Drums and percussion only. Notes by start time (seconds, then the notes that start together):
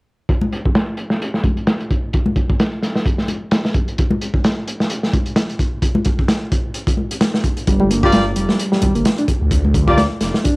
0.29 kick, closed hi-hat
0.41 high conga
0.52 closed hi-hat
0.65 kick
0.75 snare, closed hi-hat
0.97 closed hi-hat
1.10 snare
1.22 closed hi-hat
1.34 snare
1.44 kick, closed hi-hat, high conga
1.57 closed hi-hat
1.67 snare, closed hi-hat
1.80 closed hi-hat
1.91 kick, closed hi-hat
2.13 kick, closed hi-hat
2.26 high conga
2.36 kick, closed hi-hat
2.50 kick
2.60 snare, closed hi-hat
2.83 snare, closed hi-hat
2.96 snare
3.06 kick, closed hi-hat
3.18 snare
3.28 closed hi-hat, high conga
3.51 snare, closed hi-hat
3.65 snare
3.74 kick, closed hi-hat
3.88 closed hi-hat
3.98 kick, closed hi-hat
4.11 high conga
4.21 closed hi-hat
4.34 kick
4.44 snare, closed hi-hat
4.68 closed hi-hat
4.80 snare
4.90 closed hi-hat
5.03 snare
5.13 kick, closed hi-hat, high conga
5.26 closed hi-hat
5.36 snare, closed hi-hat
5.49 closed hi-hat
5.59 kick, closed hi-hat
5.82 kick, closed hi-hat
5.95 high conga
6.05 kick, closed hi-hat
6.19 kick
6.28 snare, closed hi-hat
6.52 kick, closed hi-hat
6.74 closed hi-hat
6.87 kick, closed hi-hat
6.97 high conga
7.11 closed hi-hat
7.21 snare, closed hi-hat
7.34 snare
7.44 kick, closed hi-hat
7.57 closed hi-hat
7.67 kick, closed hi-hat
7.80 high conga
7.91 closed hi-hat
8.03 kick
8.12 snare, closed hi-hat
8.36 closed hi-hat
8.49 snare
8.59 closed hi-hat
8.72 snare
8.82 kick, closed hi-hat, high conga, low conga
8.95 closed hi-hat
9.05 snare, closed hi-hat
9.18 closed hi-hat
9.28 kick, closed hi-hat
9.51 kick, closed hi-hat
9.64 high conga
9.74 kick, closed hi-hat
9.88 kick
9.98 snare, closed hi-hat
10.21 snare, closed hi-hat
10.34 snare
10.45 kick, closed hi-hat